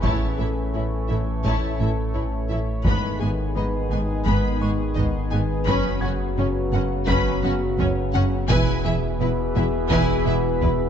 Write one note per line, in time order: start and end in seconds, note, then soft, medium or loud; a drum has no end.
0.00 2.87 A1 medium
0.00 0.11 A1 medium
0.00 0.11 A2 medium
0.00 2.50 E3 medium
0.00 2.85 E3 medium
0.00 0.24 A3 medium
0.00 2.86 A3 medium
0.00 2.50 A3 soft
0.00 0.36 E4 medium
0.00 2.85 A4 medium
0.00 0.36 C#5 medium
0.00 2.86 C#5 medium
0.00 0.36 A5 medium
0.00 2.10 C#6 soft
0.00 taiko medium
0.05 2.50 A3 soft
0.05 2.51 C#4 medium
0.38 0.47 A1 soft
0.38 0.46 A2 soft
0.38 0.46 E4 soft
0.38 0.59 A4 medium
0.38 0.47 A4 soft
0.38 0.47 E5 soft
0.74 0.82 A1 soft
0.74 0.82 A2 soft
0.74 0.95 E4 medium
0.74 0.83 E4 soft
0.74 0.84 E4 soft
0.74 0.82 C#5 soft
1.07 1.17 A1 soft
1.07 1.18 A2 soft
1.07 1.30 E4 medium
1.07 1.17 E4 soft
1.07 1.18 A4 soft
1.07 1.15 E5 soft
1.43 1.53 A1 medium
1.43 1.52 A2 medium
1.43 1.65 A3 medium
1.43 1.77 E4 medium
1.43 1.78 C#5 medium
1.43 1.77 A5 medium
1.43 taiko medium
1.79 1.88 A1 soft
1.79 1.88 A2 soft
1.79 2.01 C#4 medium
1.79 1.88 E4 soft
1.79 1.88 A4 soft
1.79 1.88 E5 soft
2.14 2.24 A1 soft
2.14 2.23 A2 soft
2.14 2.36 E4 medium
2.14 2.23 E4 soft
2.14 2.22 C#5 soft
2.49 2.58 A1 soft
2.49 2.58 A2 soft
2.49 2.71 E4 medium
2.49 2.58 E4 soft
2.49 2.59 A4 soft
2.49 2.57 E5 soft
2.84 5.68 G#1 medium
2.84 2.93 G#1 medium
2.84 2.93 G#2 medium
2.84 5.63 D#3 medium
2.84 5.68 D#3 medium
2.84 3.06 G#3 medium
2.84 5.63 G#3 medium
2.84 3.18 B3 medium
2.84 8.48 B3 medium
2.84 8.47 B3 medium
2.84 5.64 D#4 medium
2.84 5.68 G#4 medium
2.84 3.18 B4 medium
2.84 8.49 B4 medium
2.84 3.19 B5 medium
2.84 taiko medium
3.20 3.29 G#1 soft
3.20 3.29 G#2 soft
3.20 3.29 B3 soft
3.20 3.41 G#4 medium
3.20 3.29 G#4 soft
3.20 3.28 G#5 soft
3.55 3.64 G#1 soft
3.55 3.64 G#2 soft
3.55 3.64 B3 soft
3.55 3.77 D#4 medium
3.55 3.64 D#4 soft
3.55 5.64 B4 soft
3.55 3.65 D#5 soft
3.55 5.64 B5 medium
3.90 3.98 G#1 soft
3.90 4.00 G#2 soft
3.90 3.99 B3 soft
3.90 4.12 D#4 medium
3.90 3.99 G#4 soft
3.90 3.99 G#5 soft
4.25 4.34 G#1 medium
4.25 4.35 G#2 medium
4.25 4.47 G#3 medium
4.25 4.59 B3 medium
4.25 4.60 B4 medium
4.25 4.59 B5 medium
4.25 taiko medium
4.60 4.69 G#1 soft
4.60 4.70 G#2 soft
4.60 4.82 B3 medium
4.60 4.70 B3 soft
4.60 4.70 G#4 medium
4.60 4.68 G#5 medium
4.60 6.69 C#6 medium
4.95 5.04 G#1 medium
4.95 5.05 G#2 soft
4.95 5.05 B3 medium
4.95 5.18 D#4 medium
4.95 5.05 D#4 medium
4.95 5.03 D#5 medium
4.95 taiko low medium
5.30 5.39 G#1 medium
5.30 5.40 G#2 medium
5.30 5.40 B3 medium
5.30 5.53 D#4 medium
5.30 5.40 G#4 medium
5.30 5.38 G#5 medium
5.66 5.75 F#1 medium
5.66 8.51 F#1 medium
5.66 5.75 F#2 medium
5.66 8.46 C#3 medium
5.66 8.50 C#3 medium
5.66 5.88 F#3 loud
5.66 8.46 F#3 medium
5.66 6.00 C#4 medium
5.66 8.50 F#4 medium
5.66 8.46 F#4 medium
5.66 6.00 B4 medium
5.66 6.00 B5 medium
5.66 taiko medium
6.01 6.10 F#1 medium
6.01 6.11 F#2 medium
6.01 6.11 C#4 medium
6.01 6.24 F#4 medium
6.01 6.11 F#4 medium
6.01 8.10 F#5 soft
6.01 6.10 F#5 medium
6.01 8.10 G#6 medium
6.37 6.45 F#1 medium
6.37 6.46 F#2 medium
6.37 6.46 C#4 medium
6.37 6.59 C#4 medium
6.37 6.47 C#4 medium
6.37 6.46 C#5 medium
6.72 6.81 F#1 medium
6.72 6.80 F#2 medium
6.72 6.94 C#4 medium
6.72 6.82 C#4 medium
6.72 6.81 F#4 medium
6.72 6.81 F#5 medium
7.07 7.16 F#1 medium
7.07 7.16 F#2 medium
7.07 7.30 F#3 loud
7.07 7.42 C#4 medium
7.07 7.42 B4 medium
7.07 9.16 B5 medium
7.07 7.41 B5 medium
7.07 9.16 B6 medium
7.07 taiko medium
7.43 7.51 F#1 medium
7.43 7.51 F#2 medium
7.43 7.65 B3 medium
7.43 7.52 C#4 medium
7.43 7.52 F#4 medium
7.43 7.51 F#5 medium
7.78 7.86 F#1 medium
7.78 7.86 F#2 medium
7.78 7.87 C#4 medium
7.78 8.00 C#4 medium
7.78 7.88 C#5 medium
7.78 taiko low medium
8.13 8.22 F#1 medium
8.13 8.23 F#2 medium
8.13 8.22 C#4 medium
8.13 8.36 C#4 medium
8.13 8.21 F#4 medium
8.13 8.21 F#5 medium
8.49 8.57 E1 loud
8.49 10.89 E1 medium
8.49 8.58 E2 medium
8.49 10.89 B2 medium
8.49 10.89 E3 medium
8.49 8.71 E3 loud
8.49 10.89 B3 medium
8.49 8.83 E4 medium
8.49 10.89 G#4 medium
8.49 8.82 B4 loud
8.49 10.89 B4 medium
8.49 8.82 G#5 loud
8.49 taiko loud
8.84 8.93 E1 medium
8.84 8.93 E2 medium
8.84 9.06 E4 medium
8.84 8.94 E4 medium
8.84 8.92 G#4 medium
8.84 8.94 E5 medium
9.20 9.28 E1 medium
9.20 9.29 E2 medium
9.20 9.42 B3 medium
9.20 9.28 E4 medium
9.20 9.29 E4 medium
9.20 9.29 B4 medium
9.55 9.64 E1 medium
9.55 9.64 E2 medium
9.55 9.77 B3 medium
9.55 9.64 E4 medium
9.55 9.63 G#4 medium
9.55 9.64 E5 medium
9.90 9.99 E1 medium
9.90 9.99 E2 loud
9.90 10.13 E3 loud
9.90 10.24 E4 medium
9.90 10.24 B4 medium
9.90 10.24 G#5 medium
9.90 taiko medium
10.25 10.35 E1 medium
10.25 10.34 E2 medium
10.25 10.48 G#3 medium
10.25 10.35 E4 medium
10.25 10.33 G#4 medium
10.25 10.34 E5 medium
10.61 10.70 E1 medium
10.61 10.70 E2 medium
10.61 10.83 B3 medium
10.61 10.69 E4 medium
10.61 10.70 E4 medium
10.61 10.69 B4 medium
10.61 taiko low medium